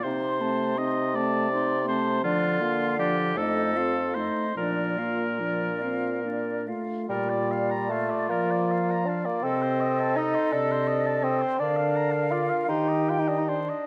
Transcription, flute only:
\new Staff \with { instrumentName = "Flute" } { \time 6/8 \key bes \major \tempo 4. = 54 c'''8 a''8 c'''8 a''8 c'''8 a''8 | d''8 f''8 d''8 ees''8 f''8 ees''8 | d''8 f''8 d''8 f''8 d''8 f''8 | d''2. |
ees''2. | f''4. g''4 r8 | }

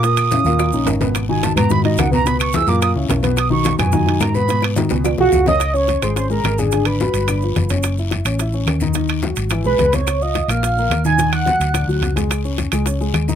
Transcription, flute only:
\new Staff \with { instrumentName = "Flute" } { \time 4/4 \key gis \dorian \tempo 4 = 215 dis'''2. r4 | r8 gis''8 a''8 ais''8 b''8 dis''8 fis''8 ais''8 | b''8 cis'''8 e'''8 d'''8 dis'''8 r4. | dis'''8 cis'''4 gis''4. ais''8 b''8~ |
b''8 r2 fis''4 dis'''8~ | \key des \major dis'''8 des'''4 c'''8 c'''8 bes''4 aes''8~ | aes''8 ces'''2. r8 | r1 |
r2 r8 ces'''4 des'''8~ | des'''8 ees'''4 f'''2 aes'''8~ | aes'''8 ges'''2. r8 | r1 | }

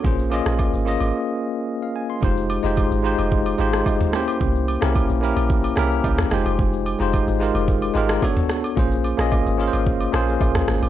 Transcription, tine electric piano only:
\new Staff \with { instrumentName = "Tine electric piano" } { \time 4/4 \key f \minor \tempo 4 = 110 << { r2. r16 f''16 aes''16 c'''16~ | c'''16 r2. r8. | r2 r8 e''8 g''8 aes''8 | r1 |
r1 | } \\ { <bes des' f' aes' c''>8 <bes des' f' aes' ees''>8. r16 <bes des' f' aes' ees''>4. r4 | <aes ees' f' g' c''>8 r16 <aes ees' f' g' c''>8 r16 <aes ees' f' g' c''>8. r16 <aes ees' f' g' c''>4 <bes des' e' g' c''>8~ | <bes des' e' g' c''>8 r16 <bes des' e' g' bes'>8 r16 <bes des' e' g' bes'>8. r16 <bes des' e' g' bes'>4 <aes ees' f' g' c''>8~ | <aes ees' f' g' c''>8 r16 <aes ees' f' g' c''>8 r16 <aes ees' f' g' bes'>8. r16 <aes ees' f' g' bes'>8 <b d' fis' a' cis''>8. r16 |
<bes des' f' aes' c''>8 r16 <bes des' f' aes' ees''>8 r16 <bes des' f' aes' bes' c''>8. r16 <bes des' f' aes' c''>4~ <bes des' f' aes' c''>16 r16 | } >> }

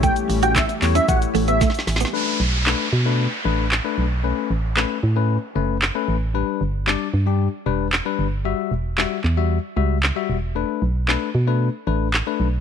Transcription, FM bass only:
\new Staff \with { instrumentName = "FM bass" } { \clef bass \time 4/4 \key b \minor \tempo 4 = 114 a,,8 a,,4 e,8 a,,8 a,,4 a,,8 | r8 b,,4 b,4 a,,4 b,,8~ | b,,8 a,,4 a,4 fis,,4 a,,8~ | a,,8 g,,4 g,4 e,,4 g,,8~ |
g,,8 e,,4 e,4 cis,4 e,,8~ | e,,8 b,,4 b,4 a,,4 b,,8 | }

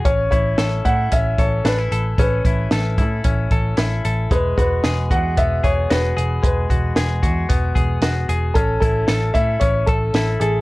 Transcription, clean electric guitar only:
\new Staff \with { instrumentName = "Clean electric guitar" } { \time 4/4 \key a \major \tempo 4 = 113 cis'8 e'8 a'8 e'8 cis'8 a'8 d'16 e'16 a'8 | cis'8 e'8 a'8 e'8 cis'8 a'8 e'8 a'8 | gis8 fis'8 gis'8 fis'8 b8 gis'8 fis'8 gis'8 | gis8 fis'8 gis'8 fis'8 b8 gis'8 fis'8 gis'8 |
cis'8 e'8 a'8 e'8 cis'8 a'8 e'8 a'8 | }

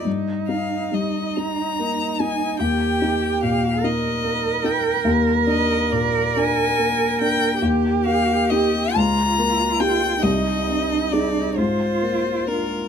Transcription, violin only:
\new Staff \with { instrumentName = "Violin" } { \time 6/8 \key ees \major \tempo 4. = 47 r8 f''8 ees''8 bes''4 aes''8 | g''4 f''8 ees''4 g''8 | r8 ees''8 d''8 aes''4 g''8 | r8 f''8 ees''8 bes''4 g''8 |
ees''4 d''8 c''4 bes'8 | }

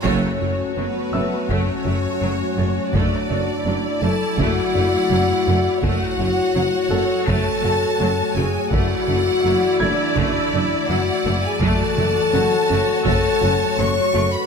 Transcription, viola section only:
\new Staff \with { instrumentName = "Viola section" } { \time 4/4 \key fis \minor \tempo 4 = 83 << { fis'1~ | fis'4 e'2. | fis'1 | e'1 |
fis'1 | } \\ { a8 a8 fis8 a8 a8 a8 fis8 a8 | a8 a8 fis8 a8 a8 a8 fis8 a8 | a8 a8 fis8 a8 a8 a8 fis8 a8 | a8 a8 fis8 a8 a8 a8 fis8 a8 |
a8 a8 fis8 a8 a8 a8 fis8 a8 | } >> }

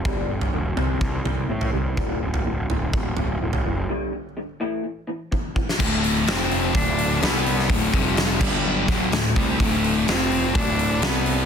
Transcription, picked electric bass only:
\new Staff \with { instrumentName = "Picked electric bass" } { \clef bass \time 4/4 \key g \major \tempo 4 = 126 g,,8 g,,8 e,,8 c,8 c,8 c,8 a,8 c,8 | d,,8 d,,8 d,,8 d,,8 d,,8 d,,8 d,,8 fis,,8 | r1 | d,,4 f,,4 d,,4 c,4 |
d,,8 f,,4 g,,4 d,,8 d,,8 c,8 | d,,4 f,,4 d,,4 c,4 | }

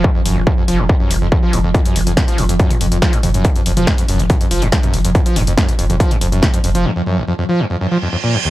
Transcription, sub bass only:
\new Staff \with { instrumentName = "Sub bass" } { \clef bass \time 4/4 \key ges \lydian \tempo 4 = 141 r8 f,,16 f,,16 r8 f,,16 f,,16 r8 f,,16 f,,16 r8 f,,16 f,,16 | r8 f,,16 f,,16 r8 f,,16 f,,16 r8 f,,16 f,,16 r8 f,,16 f,,16 | r8 f,,16 f,,16 r8 f,,16 f,,16 r8 f,,16 f,,16 r8 f,,16 f,,16 | r8 f,,16 f,,16 r8 f,,16 f,,16 r8 f,,16 f,,16 r8 f,,16 f,,16 |
r1 | }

